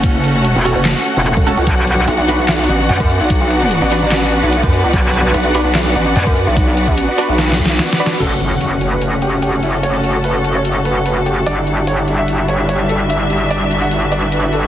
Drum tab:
CC |------------------------------------------------|------------------------------------------------|------------------------------------------------|------------------------------------------------|
HH |x-----x-----x-----o-----x-----x-----x-----x-----|x-----x-----x-----o-----x-----x-----x-----x-----|x-----x-----x-----o-----x-----x-----x-----x-----|x-----x-----x-----o-----x-----x-----x-----x-----|
CP |------------------------x-----------------------|------------------------x-----------------------|------------------------x-----------------------|------------------------x-----------------------|
SD |------------------------o-----------------------|------------------------o-----------------------|------------------------o-----------------------|------------------------o-----------------------|
BD |o--------------------------------------o--------|o--------------------------------------o--------|o--------------------------------------o--------|o--------------------------------------o--------|

CC |------------------------------------------------|x-----------------------------------------------|------------------------------------------------|------------------------------------------------|
HH |x-----x-----x-----o-----x-----x-----x-----x-----|x-----x-----x-----x-----x-----x-----x-----x-----|x-----x-----x-----x-----x-----x-----x-----x-----|x-----x-----x-----x-----x-----x-----x-----x-----|
CP |------------------------------------------------|------------------------------------------------|------------------------------------------------|------------------------------------------------|
SD |------------------------o---o---o---o---o---o---|------------------------------------------------|------------------------------------------------|------------------------------------------------|
BD |o--------o--------------------o-----------------|------------------------------------------------|------------------------------------------------|------------------------------------------------|

CC |------------------------------------------------|
HH |x-----x-----x-----x-----x-----x-----x-----x-----|
CP |------------------------------------------------|
SD |------------------------------------------------|
BD |------------------------------------------------|